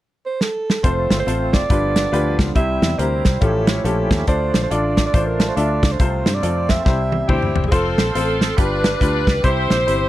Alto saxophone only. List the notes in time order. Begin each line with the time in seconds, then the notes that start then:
0.26 C5
0.42 A4
0.85 C5
1.20 C5
1.54 D5
2.56 E5
2.99 C5
3.42 A4
3.68 C#5
3.85 A4
4.28 C5
4.63 C5
4.72 D5
5.06 D5
5.27 A#4
5.49 C5
5.56 D5
5.92 C5
6.35 D5
6.70 E5
7.30 G4
7.68 G#4
7.73 A4
8.16 A4
8.59 B4
9.45 C5